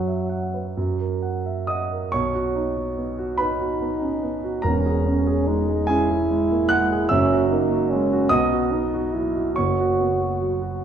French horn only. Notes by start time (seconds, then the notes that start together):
Already playing: F#3
3.39 D#4
4.64 C#4
5.06 C#4
5.47 D#4
5.89 E4
7.11 C#4
7.50 D#4
7.90 C#4
8.31 B3
8.71 D#4
9.13 E4
9.55 F#4